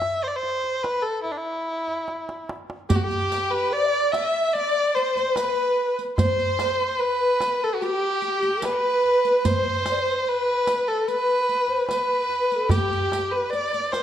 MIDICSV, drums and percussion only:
0, 0, Header, 1, 3, 480
1, 0, Start_track
1, 0, Tempo, 818554
1, 1697, Time_signature, 4, 2, 24, 8
1, 8227, End_track
2, 0, Start_track
2, 0, Title_t, "Darbuka"
2, 10, Note_on_c, 9, 63, 58
2, 69, Note_off_c, 9, 63, 0
2, 254, Note_on_c, 9, 62, 23
2, 312, Note_off_c, 9, 62, 0
2, 375, Note_on_c, 9, 62, 24
2, 433, Note_off_c, 9, 62, 0
2, 494, Note_on_c, 9, 63, 61
2, 553, Note_off_c, 9, 63, 0
2, 735, Note_on_c, 9, 62, 23
2, 793, Note_off_c, 9, 62, 0
2, 1100, Note_on_c, 9, 62, 25
2, 1159, Note_off_c, 9, 62, 0
2, 1220, Note_on_c, 9, 63, 42
2, 1278, Note_off_c, 9, 63, 0
2, 1343, Note_on_c, 9, 62, 60
2, 1401, Note_off_c, 9, 62, 0
2, 1463, Note_on_c, 9, 63, 69
2, 1521, Note_off_c, 9, 63, 0
2, 1582, Note_on_c, 9, 62, 69
2, 1641, Note_off_c, 9, 62, 0
2, 1702, Note_on_c, 9, 64, 86
2, 1761, Note_off_c, 9, 64, 0
2, 1823, Note_on_c, 9, 62, 27
2, 1881, Note_off_c, 9, 62, 0
2, 2425, Note_on_c, 9, 63, 60
2, 2483, Note_off_c, 9, 63, 0
2, 3024, Note_on_c, 9, 62, 27
2, 3083, Note_off_c, 9, 62, 0
2, 3143, Note_on_c, 9, 63, 62
2, 3201, Note_off_c, 9, 63, 0
2, 3624, Note_on_c, 9, 64, 87
2, 3683, Note_off_c, 9, 64, 0
2, 3744, Note_on_c, 9, 62, 24
2, 3802, Note_off_c, 9, 62, 0
2, 3864, Note_on_c, 9, 63, 65
2, 3923, Note_off_c, 9, 63, 0
2, 4343, Note_on_c, 9, 63, 68
2, 4401, Note_off_c, 9, 63, 0
2, 4945, Note_on_c, 9, 62, 25
2, 5004, Note_off_c, 9, 62, 0
2, 5062, Note_on_c, 9, 63, 64
2, 5121, Note_off_c, 9, 63, 0
2, 5306, Note_on_c, 9, 62, 29
2, 5365, Note_off_c, 9, 62, 0
2, 5542, Note_on_c, 9, 64, 77
2, 5600, Note_off_c, 9, 64, 0
2, 5663, Note_on_c, 9, 62, 28
2, 5721, Note_off_c, 9, 62, 0
2, 5780, Note_on_c, 9, 63, 66
2, 5839, Note_off_c, 9, 63, 0
2, 6259, Note_on_c, 9, 63, 60
2, 6318, Note_off_c, 9, 63, 0
2, 6850, Note_on_c, 9, 62, 27
2, 6908, Note_off_c, 9, 62, 0
2, 6970, Note_on_c, 9, 63, 59
2, 7029, Note_off_c, 9, 63, 0
2, 7209, Note_on_c, 9, 62, 26
2, 7268, Note_off_c, 9, 62, 0
2, 7444, Note_on_c, 9, 64, 88
2, 7503, Note_off_c, 9, 64, 0
2, 7572, Note_on_c, 9, 62, 26
2, 7630, Note_off_c, 9, 62, 0
2, 7693, Note_on_c, 9, 63, 61
2, 7752, Note_off_c, 9, 63, 0
2, 7933, Note_on_c, 9, 62, 26
2, 7991, Note_off_c, 9, 62, 0
2, 8051, Note_on_c, 9, 62, 25
2, 8110, Note_off_c, 9, 62, 0
2, 8170, Note_on_c, 9, 63, 62
2, 8227, Note_off_c, 9, 63, 0
2, 8227, End_track
3, 0, Start_track
3, 0, Title_t, "Riq"
3, 1700, Note_on_c, 9, 54, 58
3, 1759, Note_off_c, 9, 54, 0
3, 1823, Note_on_c, 9, 54, 17
3, 1882, Note_off_c, 9, 54, 0
3, 1946, Note_on_c, 9, 54, 47
3, 2005, Note_off_c, 9, 54, 0
3, 2429, Note_on_c, 9, 54, 44
3, 2487, Note_off_c, 9, 54, 0
3, 2669, Note_on_c, 9, 54, 17
3, 2727, Note_off_c, 9, 54, 0
3, 2911, Note_on_c, 9, 54, 17
3, 2969, Note_off_c, 9, 54, 0
3, 3032, Note_on_c, 9, 54, 18
3, 3090, Note_off_c, 9, 54, 0
3, 3149, Note_on_c, 9, 54, 53
3, 3208, Note_off_c, 9, 54, 0
3, 3511, Note_on_c, 9, 54, 17
3, 3569, Note_off_c, 9, 54, 0
3, 3629, Note_on_c, 9, 54, 51
3, 3688, Note_off_c, 9, 54, 0
3, 3749, Note_on_c, 9, 54, 16
3, 3808, Note_off_c, 9, 54, 0
3, 3867, Note_on_c, 9, 54, 56
3, 3926, Note_off_c, 9, 54, 0
3, 4348, Note_on_c, 9, 54, 47
3, 4407, Note_off_c, 9, 54, 0
3, 4586, Note_on_c, 9, 54, 17
3, 4644, Note_off_c, 9, 54, 0
3, 4820, Note_on_c, 9, 54, 18
3, 4878, Note_off_c, 9, 54, 0
3, 4940, Note_on_c, 9, 54, 21
3, 4999, Note_off_c, 9, 54, 0
3, 5056, Note_on_c, 9, 54, 52
3, 5114, Note_off_c, 9, 54, 0
3, 5423, Note_on_c, 9, 54, 20
3, 5482, Note_off_c, 9, 54, 0
3, 5542, Note_on_c, 9, 54, 58
3, 5600, Note_off_c, 9, 54, 0
3, 5781, Note_on_c, 9, 54, 49
3, 5839, Note_off_c, 9, 54, 0
3, 6259, Note_on_c, 9, 54, 46
3, 6318, Note_off_c, 9, 54, 0
3, 6499, Note_on_c, 9, 54, 17
3, 6558, Note_off_c, 9, 54, 0
3, 6738, Note_on_c, 9, 54, 18
3, 6797, Note_off_c, 9, 54, 0
3, 6982, Note_on_c, 9, 54, 47
3, 7041, Note_off_c, 9, 54, 0
3, 7340, Note_on_c, 9, 54, 18
3, 7399, Note_off_c, 9, 54, 0
3, 7455, Note_on_c, 9, 54, 51
3, 7514, Note_off_c, 9, 54, 0
3, 7580, Note_on_c, 9, 54, 17
3, 7639, Note_off_c, 9, 54, 0
3, 7700, Note_on_c, 9, 54, 48
3, 7758, Note_off_c, 9, 54, 0
3, 7934, Note_on_c, 9, 54, 18
3, 7993, Note_off_c, 9, 54, 0
3, 8058, Note_on_c, 9, 54, 19
3, 8116, Note_off_c, 9, 54, 0
3, 8173, Note_on_c, 9, 54, 37
3, 8227, Note_off_c, 9, 54, 0
3, 8227, End_track
0, 0, End_of_file